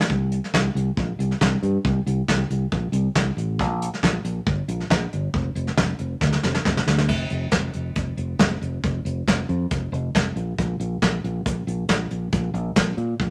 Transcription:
0.01 snare
0.10 C2, kick
0.32 closed hi-hat
0.44 snare
0.54 C2, kick, snare
0.75 C2, closed hi-hat
0.97 A#1, kick
1.19 C2, closed hi-hat
1.31 snare
1.41 C2, kick, snare
1.63 G2, closed hi-hat
1.85 C2, kick
2.06 C2, closed hi-hat
2.28 C2, kick, snare
2.50 C2, closed hi-hat
2.72 A#1, kick
2.92 C2, closed hi-hat
3.15 C2, kick, snare
3.37 A1, closed hi-hat
3.59 A#1, kick
3.82 closed hi-hat
3.94 snare
4.03 A#1, kick, snare
4.25 A#1, closed hi-hat
4.46 G1, kick
4.68 A#1, closed hi-hat
4.80 snare
4.90 A#1, kick, snare
5.13 G1, closed hi-hat
5.34 F1, kick
5.55 F1, closed hi-hat
5.67 snare
5.77 F1, kick, snare
5.99 F1, closed hi-hat
6.21 D2, kick, snare
6.32 snare
6.43 F1, snare
6.54 snare
6.65 F1, kick, snare
6.77 snare
6.87 D2, snare
6.98 snare
7.08 F1, kick, crash
7.30 F1, closed hi-hat
7.51 F1, kick, snare, closed hi-hat
7.73 F1, closed hi-hat
7.96 F1, kick, closed hi-hat
8.17 F1, closed hi-hat
8.39 F1, kick, snare, closed hi-hat
8.62 F1, closed hi-hat
8.84 F1, kick, closed hi-hat
9.05 F1, closed hi-hat
9.28 F1, kick, snare, closed hi-hat
9.49 F2, closed hi-hat
9.71 F1, kick, closed hi-hat
9.92 F1, closed hi-hat
10.15 F1, kick, snare, closed hi-hat
10.36 A#1, closed hi-hat
10.58 A#1, kick, closed hi-hat
10.80 A#1, closed hi-hat
11.02 A#1, kick, snare, closed hi-hat
11.24 A#1, closed hi-hat
11.46 A#1, kick, closed hi-hat
11.67 A#1, closed hi-hat
11.89 A#1, kick, snare, closed hi-hat
12.11 A#1, closed hi-hat
12.32 A#1, kick, closed hi-hat
12.54 A#1, closed hi-hat
12.76 A#1, kick, snare, closed hi-hat
12.97 A#2, closed hi-hat
13.20 A#1, kick

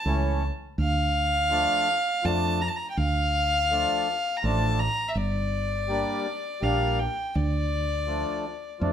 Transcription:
Already playing: A5
0.05 C#2 E3 A3 C#4
0.78 D2 F5
1.50 F3 A3 D4
2.23 F2 F3 A3 D4 A5
2.61 A#5
2.68 A5
2.76 A#5
2.90 G5
2.97 D2 F5
3.71 F3 A3 D4
4.37 A#5
4.43 A1 F3 A3 D4 A5
4.79 A#5
5.08 E5
5.15 G1 D5
5.88 G3 A#3 D4
6.61 A#1 G3 A#3 D4 F5
6.99 G5
7.35 D2 D5
8.07 F3 A3 D4
8.80 F2 F3 A3 D4

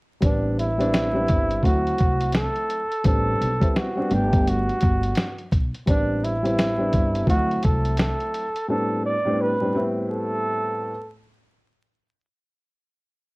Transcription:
0.21 A1 G3 B3 C4 D4, kick, closed hi-hat
0.59 E4, closed hi-hat
0.78 G3 B3 C4 D4, closed hi-hat
0.94 snare, closed hi-hat
1.13 G3 B3 C4 D4
1.28 G1, kick, closed hi-hat
1.51 closed hi-hat
1.62 D2 F#3 A3 C4 E4 F#4, kick, closed hi-hat
1.87 closed hi-hat
1.98 C2, kick, closed hi-hat
2.21 closed hi-hat
2.32 A4, snare, closed hi-hat
2.56 closed hi-hat
2.70 closed hi-hat
2.91 closed hi-hat
3.04 A1 G3 B3 C4 D4 A4, kick, closed hi-hat
3.41 B1, closed hi-hat
3.60 G3 B3 C4 E4, kick, closed hi-hat
3.76 F#4, snare, closed hi-hat
3.95 G3 B3 C4 D4
4.09 G1 G3 A3 B3 D4, closed hi-hat
4.13 G4
4.33 kick, closed hi-hat
4.47 F#4, closed hi-hat
4.69 closed hi-hat
4.81 G1, kick, closed hi-hat
5.03 closed hi-hat
5.15 snare, closed hi-hat
5.38 closed hi-hat
5.52 B1, kick, closed hi-hat
5.74 closed hi-hat
5.86 A1 G3 B3 C4 D4, kick, closed hi-hat
6.24 E4, closed hi-hat
6.43 G3 B3 C4 E4, closed hi-hat
6.59 snare, closed hi-hat
6.77 G3 B3 C4 D4
6.93 G1, kick, closed hi-hat
7.15 closed hi-hat
7.27 D2 F3 A3 C4 E4 F#4, kick, closed hi-hat
7.33 F#3
7.51 closed hi-hat
7.63 C2 A4, kick, closed hi-hat
7.85 closed hi-hat
7.97 A4, snare, closed hi-hat
8.20 closed hi-hat
8.34 closed hi-hat
8.56 closed hi-hat
8.68 A2 G3 B3 C4 D4 A4
9.06 D5
9.25 A2 G3 B3 C4 D4
9.41 B4
9.60 A2 G3 B3 C4 D4
9.74 A2 G3 B3 C4 E4
10.11 A4

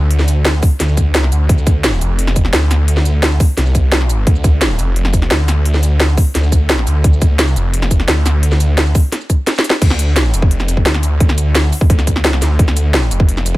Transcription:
Already playing: D2
0.11 closed hi-hat
0.19 snare, shaker
0.28 closed hi-hat, shaker
0.45 snare, closed hi-hat
0.54 shaker
0.63 kick, open hi-hat, shaker
0.80 D2, snare, closed hi-hat
0.89 shaker
0.97 kick, closed hi-hat, shaker
1.15 snare, closed hi-hat
1.23 snare
1.32 D2, closed hi-hat, shaker
1.49 D2, kick, closed hi-hat
1.58 shaker
1.67 kick, closed hi-hat, shaker
1.84 snare, closed hi-hat
1.93 shaker
2.01 F1, closed hi-hat, shaker
2.19 closed hi-hat
2.27 snare, shaker
2.36 kick, closed hi-hat, shaker
2.45 snare
2.53 D2, snare, closed hi-hat
2.71 snare, closed hi-hat, shaker
2.88 closed hi-hat
2.97 snare, shaker
3.05 closed hi-hat, shaker
3.23 snare, closed hi-hat
3.31 shaker
3.40 kick, open hi-hat, shaker
3.57 C2, snare, closed hi-hat
3.66 shaker
3.75 kick, closed hi-hat, shaker
3.92 snare, closed hi-hat
4.01 snare
4.10 closed hi-hat, shaker
4.27 D2, kick, closed hi-hat
4.36 shaker
4.44 kick, closed hi-hat, shaker
4.61 snare, closed hi-hat
4.70 shaker
4.79 F1, closed hi-hat, shaker
4.96 closed hi-hat
5.05 snare, shaker
5.13 kick, closed hi-hat, shaker
5.22 snare
5.31 D2, snare, closed hi-hat
5.48 snare, closed hi-hat, shaker
5.66 closed hi-hat
5.74 snare, shaker
5.83 closed hi-hat, shaker
6.00 snare, closed hi-hat
6.09 shaker
6.18 kick, open hi-hat, shaker
6.35 D2, snare, closed hi-hat
6.44 shaker
6.52 kick, closed hi-hat, shaker
6.70 snare, closed hi-hat
6.78 snare
6.87 D2, closed hi-hat, shaker
7.04 D2, kick, closed hi-hat
7.13 shaker
7.22 kick, closed hi-hat, shaker
7.39 snare, closed hi-hat
7.48 shaker
7.56 F1, closed hi-hat, shaker
7.74 closed hi-hat
7.82 snare, shaker
7.91 kick, closed hi-hat, shaker
8.00 snare
8.08 D2, snare, closed hi-hat
8.26 snare, closed hi-hat, shaker
8.43 closed hi-hat
8.52 snare, shaker
8.60 closed hi-hat, shaker
8.78 snare, closed hi-hat
8.86 shaker
8.95 kick, open hi-hat, shaker
9.12 snare, closed hi-hat
9.21 shaker
9.30 kick, closed hi-hat, shaker
9.47 snare, closed hi-hat
9.56 snare, shaker
9.64 closed hi-hat, shaker
9.70 snare
9.82 D2, kick, closed hi-hat, crash
9.90 snare, shaker
9.99 closed hi-hat, shaker
10.16 snare, closed hi-hat
10.25 shaker
10.34 F1, closed hi-hat, shaker
10.42 kick
10.51 closed hi-hat
10.60 snare, shaker
10.68 closed hi-hat, shaker
10.77 kick
10.86 D2, snare, closed hi-hat
10.94 snare, shaker
11.03 closed hi-hat, shaker
11.20 kick, closed hi-hat
11.29 snare, shaker
11.38 closed hi-hat, shaker
11.55 snare, closed hi-hat
11.64 shaker
11.73 open hi-hat, shaker
11.81 kick
11.90 D2, kick, closed hi-hat
11.99 snare, shaker
12.07 kick, closed hi-hat, shaker
12.16 snare
12.25 snare, closed hi-hat
12.33 snare, shaker
12.42 D2, snare, closed hi-hat, shaker
12.59 D2, kick, closed hi-hat
12.68 snare, shaker
12.77 closed hi-hat, shaker
12.94 snare, closed hi-hat
13.03 shaker
13.11 F1, closed hi-hat, shaker
13.20 kick
13.29 closed hi-hat
13.37 snare, shaker
13.46 closed hi-hat, shaker

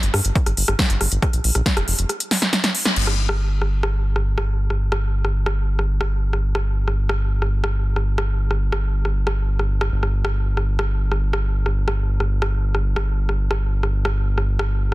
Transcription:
0.03 G1, closed hi-hat
0.14 G2, cross-stick, open hi-hat
0.25 G1, closed hi-hat
0.35 kick, closed hi-hat
0.46 G1, cross-stick, closed hi-hat
0.57 G1, open hi-hat
0.68 G1, cross-stick, closed hi-hat
0.79 kick, snare, closed hi-hat
0.90 G1, closed hi-hat
1.01 G1, cross-stick, open hi-hat
1.12 G1, closed hi-hat
1.22 kick, cross-stick, closed hi-hat
1.33 A#1, closed hi-hat
1.44 A#1, open hi-hat
1.55 A#1, cross-stick, closed hi-hat
1.66 kick, snare, closed hi-hat
1.77 F1, cross-stick, closed hi-hat
1.88 F1, open hi-hat
1.99 F1, closed hi-hat
2.09 cross-stick, closed hi-hat
2.20 closed hi-hat
2.31 snare, open hi-hat
2.42 snare, closed hi-hat
2.53 snare, closed hi-hat
2.64 snare, closed hi-hat
2.75 open hi-hat
2.85 snare, closed hi-hat
2.96 G1, crash
3.07 cross-stick
3.29 cross-stick
3.62 cross-stick
3.83 cross-stick
4.16 cross-stick
4.38 cross-stick
4.70 cross-stick
4.92 cross-stick
5.25 cross-stick
5.46 cross-stick
5.79 cross-stick
6.01 cross-stick
6.33 cross-stick
6.55 cross-stick
6.88 cross-stick
7.09 cross-stick
7.42 cross-stick
7.64 cross-stick
7.96 cross-stick
8.18 cross-stick
8.51 cross-stick
8.72 cross-stick
9.05 cross-stick
9.27 cross-stick
9.59 cross-stick
9.81 cross-stick
9.92 G1
10.03 cross-stick
10.25 cross-stick
10.57 cross-stick
10.79 cross-stick
11.12 cross-stick
11.33 cross-stick
11.66 cross-stick
11.88 cross-stick
12.20 cross-stick
12.42 cross-stick
12.75 cross-stick
12.96 cross-stick
13.29 cross-stick
13.51 cross-stick
13.83 cross-stick
14.05 cross-stick
14.38 cross-stick
14.59 cross-stick

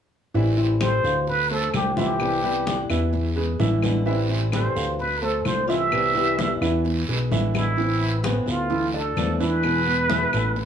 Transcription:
0.34 A1 E3 G3 C4 E4 E5, high conga, long guiro
0.57 G3 C4 E4, high conga
0.80 E3 G3 C4 E4 G4 A4 C5, high conga, short guiro, claves
1.04 D2 F5, high conga, short guiro
1.27 B4, muted nylon-string guitar stroke, high conga, long guiro
1.50 A3 A4 C5, high conga
1.73 C2 D3 A3 C4 F4 G4, high conga, short guiro, claves
1.97 E3 A3 C4 E4 F4 G4 E5, high conga, short guiro
2.19 C3 E3 G3 B3 E4, high conga, long guiro, claves
2.42 E3 G3 B3 E4 G4 B4, high conga
2.66 E3 G3 B3 E4, high conga, short guiro
2.90 E2 E3 E4 E5, high conga, short guiro, claves
3.13 muted nylon-string guitar stroke, high conga, long guiro
3.36 G#3 G#4 B4, high conga
3.59 A1 D3 E3 G#3 B3 E4 E5, high conga, short guiro
3.83 D3 G#3 B3 E4, high conga, short guiro, claves
4.05 E3 G3 C4 E4 E5, high conga, long guiro
4.29 G3 C4 E4, high conga
4.52 E3 G3 C4 E4 G4 A4 C5, high conga, short guiro, claves
4.76 D2 F5, high conga, short guiro
4.99 B4, muted nylon-string guitar stroke, high conga, long guiro
5.22 A3 A4 C5, high conga
5.45 C2 D3 A3 C4 F4 C5, high conga, short guiro, claves
5.68 E3 A3 C4 E4 F4 E5, short guiro
5.91 C3 E3 G3 B3 E4, high conga, long guiro, claves
6.14 E3 G3 B3 E4 G4 B4, high conga
6.38 E3 G3 B3 E4, high conga, short guiro
6.61 E2 E3 E4 E5, high conga, short guiro, claves
6.84 muted nylon-string guitar stroke, high conga, long guiro
7.08 B1 G#3 G#4 B4, high conga
7.31 A1 D3 E3 G#3 B3 E4 E5, high conga, short guiro
7.54 D3 G#3 B3 E4, high conga, short guiro, claves
7.76 E3 B3 C4 E4, high conga, long guiro
8.01 high conga
8.23 E3 B3 C4 E4 B4, high conga, short guiro, claves
8.46 D2 B3 C4 E4 F4, high conga, short guiro
8.70 E3 E4, muted nylon-string guitar stroke, high conga, long guiro
8.94 D4 A4 D5, high conga
9.16 E2 D3 F3 A3 D4 E4, high conga, short guiro, claves
9.40 E3 A3 D4 E4 B4, short guiro
9.63 B2 E3 G#3 B3 E4, high conga, long guiro, claves
9.86 B3 B4, high conga
10.09 B2 E3 G#3 B3 E4 E5, high conga, short guiro
10.33 A1 G#3 A3 B3 E4 A4, high conga, short guiro, claves
10.56 muted nylon-string guitar stroke, high conga, long guiro

